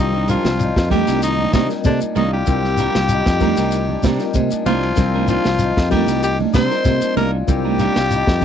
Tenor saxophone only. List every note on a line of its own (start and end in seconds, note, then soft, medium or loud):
0.00 0.26 D#4 loud
0.30 0.88 F4 medium
0.91 1.20 G4 loud
1.23 1.52 D#4 loud
1.54 1.68 D#4 medium
1.86 2.00 D4 medium
2.17 2.32 D#4 medium
2.33 4.36 G4 loud
4.66 5.25 F4 loud
5.29 5.88 F4 loud
5.91 6.21 G4 loud
6.24 6.38 G4 loud
6.55 7.13 C5 loud
7.17 7.31 A#4 loud
7.49 8.45 G4 loud